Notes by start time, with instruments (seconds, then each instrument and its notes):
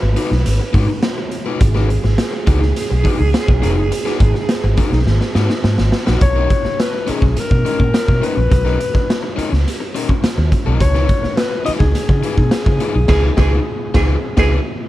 Already playing: tenor saxophone B4
0.02 fingered electric bass G#1, muted overdriven electric guitar stroke
0.16 overdriven electric guitar D#4 F#4 B4, closed hi-hat
0.31 fingered electric bass B1, muted overdriven electric guitar stroke, snare
0.46 fingered electric bass G#1, snare, closed hi-hat
0.60 muted overdriven electric guitar stroke
0.73 fingered electric bass G#2, overdriven electric guitar D#4 F#4 B4, kick, open hi-hat
0.88 muted overdriven electric guitar stroke
1.03 muted overdriven electric guitar stroke, snare, closed hi-hat
1.18 muted overdriven electric guitar stroke
1.31 closed hi-hat
1.46 overdriven electric guitar D#4 F#4 B4
1.60 fingered electric bass G#1, tenor saxophone G#4, muted overdriven electric guitar stroke, kick, closed hi-hat
1.75 overdriven electric guitar D#4 F#4 B4, snare
1.89 muted overdriven electric guitar stroke, closed hi-hat
2.04 fingered electric bass G#1, muted overdriven electric guitar stroke, snare
2.18 snare, closed hi-hat
2.33 muted overdriven electric guitar stroke
2.47 fingered electric bass C#2, overdriven electric guitar D#4 F#4 B4, kick, closed hi-hat
2.62 muted overdriven electric guitar stroke, snare
2.76 snare, closed hi-hat
2.90 fingered electric bass B1, muted overdriven electric guitar stroke
3.04 overdriven electric guitar D#4 F#4 B4, kick, open hi-hat
3.19 fingered electric bass C#2, muted overdriven electric guitar stroke
3.34 muted overdriven electric guitar stroke, snare, closed hi-hat
3.48 fingered electric bass B1, muted overdriven electric guitar stroke, kick
3.62 fingered electric bass F1, overdriven electric guitar D#4 F#4 B4, closed hi-hat
3.77 fingered electric bass F#1, muted overdriven electric guitar stroke
3.91 muted overdriven electric guitar stroke, closed hi-hat
4.05 overdriven electric guitar D#4 F#4 B4, snare
4.20 fingered electric bass G#1, muted overdriven electric guitar stroke, kick, closed hi-hat
4.34 muted overdriven electric guitar stroke, snare
4.49 snare, closed hi-hat
4.64 fingered electric bass G#1, muted overdriven electric guitar stroke
4.77 overdriven electric guitar D#4 F#4 B4, kick, closed hi-hat
4.92 fingered electric bass B1, muted overdriven electric guitar stroke, snare
5.07 fingered electric bass G#1, snare
5.21 muted overdriven electric guitar stroke, snare
5.35 fingered electric bass G#2, overdriven electric guitar D#4 F#4 B4, snare
5.50 muted overdriven electric guitar stroke, snare
5.64 fingered electric bass G#2, muted overdriven electric guitar stroke, snare
5.78 fingered electric bass G#1, muted overdriven electric guitar stroke, snare
5.92 snare
6.06 fingered electric bass A#1, overdriven electric guitar D#4 F#4 B4, snare
6.21 fingered electric bass B1, alto saxophone C#5, muted overdriven electric guitar stroke, kick, closed hi-hat
6.36 overdriven electric guitar C#4 D#4 A#4
6.50 muted overdriven electric guitar stroke, kick, closed hi-hat
6.65 muted overdriven electric guitar stroke, muted fingered electric bass stroke, snare
6.80 alto saxophone B4, snare, closed hi-hat
6.93 muted overdriven electric guitar stroke
7.07 overdriven electric guitar C#4 D#4 A#4, alto saxophone G#4, muted fingered electric bass stroke, closed hi-hat
7.20 fingered electric bass B1, muted overdriven electric guitar stroke, kick, snare
7.36 alto saxophone A#4, muted fingered electric bass stroke, snare, closed hi-hat
7.50 fingered electric bass B2, muted overdriven electric guitar stroke, kick
7.65 overdriven electric guitar C#4 D#4 A#4, closed hi-hat
7.80 fingered electric bass A#2, muted overdriven electric guitar stroke, kick
7.94 muted overdriven electric guitar stroke, snare, closed hi-hat
8.08 fingered electric bass B2, muted overdriven electric guitar stroke, kick
8.22 overdriven electric guitar C#4 D#4 A#4, alto saxophone B4, closed hi-hat
8.36 fingered electric bass A#1, muted overdriven electric guitar stroke
8.51 fingered electric bass B1, muted overdriven electric guitar stroke, kick, closed hi-hat
8.65 overdriven electric guitar C#4 D#4 A#4, snare
8.79 muted overdriven electric guitar stroke, closed hi-hat
8.94 muted overdriven electric guitar stroke, muted fingered electric bass stroke, kick, snare
9.10 snare, closed hi-hat
9.23 muted overdriven electric guitar stroke
9.36 overdriven electric guitar C#4 D#4 A#4, muted fingered electric bass stroke, closed hi-hat
9.51 fingered electric bass C#2, muted overdriven electric guitar stroke, snare
9.68 snare, closed hi-hat
9.80 muted overdriven electric guitar stroke
9.95 overdriven electric guitar C#4 D#4 A#4, closed hi-hat
10.09 muted overdriven electric guitar stroke, kick
10.23 muted overdriven electric guitar stroke, muted fingered electric bass stroke, snare, closed hi-hat
10.38 fingered electric bass D#2, muted overdriven electric guitar stroke
10.52 kick, closed hi-hat
10.66 fingered electric bass B1, overdriven electric guitar C#4 D#4 A#4
10.80 fingered electric bass C#2, alto saxophone C#5, muted overdriven electric guitar stroke, kick, closed hi-hat
10.95 overdriven electric guitar D#4 F4 B4, snare
11.08 muted overdriven electric guitar stroke, kick, closed hi-hat
11.23 muted overdriven electric guitar stroke, muted fingered electric bass stroke, snare
11.37 alto saxophone B4, snare, closed hi-hat
11.51 muted overdriven electric guitar stroke
11.65 overdriven electric guitar D#4 F4 B4, alto saxophone D#5, muted fingered electric bass stroke, closed hi-hat
11.79 fingered electric bass C#2, alto saxophone G#4, muted overdriven electric guitar stroke, kick, snare
11.95 muted fingered electric bass stroke, snare, closed hi-hat
12.09 fingered electric bass C#3, muted overdriven electric guitar stroke, kick
12.23 overdriven electric guitar D#4 F4 B4, closed hi-hat
12.37 fingered electric bass B2, muted overdriven electric guitar stroke, kick
12.51 muted overdriven electric guitar stroke, snare, closed hi-hat
12.66 fingered electric bass C#3, muted overdriven electric guitar stroke, kick
12.80 overdriven electric guitar D#4 F4 B4, closed hi-hat
12.94 fingered electric bass B1, muted overdriven electric guitar stroke
13.08 fingered electric bass C#2, overdriven electric guitar D#4 F4 B4, tenor saxophone G#4, kick, snare, crash
13.37 fingered electric bass C#2, overdriven electric guitar D#4 F4 B4, tenor saxophone G#4, kick, snare
13.94 fingered electric bass C#2, overdriven electric guitar D#4 F4 B4, tenor saxophone G#4, kick, snare
14.37 fingered electric bass C#2, overdriven electric guitar D#4 F4 B4, tenor saxophone G#4, kick, snare